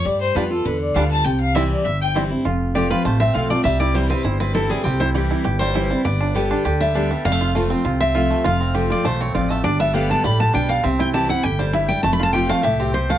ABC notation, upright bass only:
X:1
M:4/4
L:1/8
Q:1/4=200
K:C
V:1 name="Upright bass" clef=bass
G,,2 F,,2 E,,2 D,,2 | C,,4 G,,,4 | F,,,4 A,,,2 B,,,2 | C,,4 G,,,4 |
C,,4 G,,,4 | G,,,4 D,,4 | F,,,4 C,,4 | F,,,4 B,,,2 A,,,2 |
G,,,4 A,,,2 B,,,2 | C,,4 G,,,4 | F,,,4 C,,4 |]